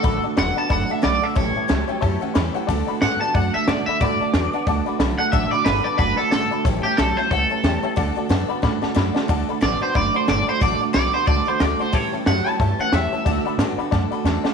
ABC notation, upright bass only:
X:1
M:4/4
L:1/8
Q:"Swing" 1/4=181
K:D
V:1 name="Upright bass" clef=bass
A,,, z E,,, z F,,, z B,,, z | A,,, z C,, z F,, z E,, z | D,, z A,, z F,, z B,, z | A,, z E,, z D,, z B,,, z |
A,,, z G,,, z F,,, z ^G,,, z | A,,, z B,,, z C,, z E,, z | D,, z F,, z A,, z F,, z | D,, z A,,, z F,,, z G,,, z |
A,,, z B,,, z C,, z D,, z | A,, z F,, z G,, z E,, z | D,, z A,, z F,, z E,, z |]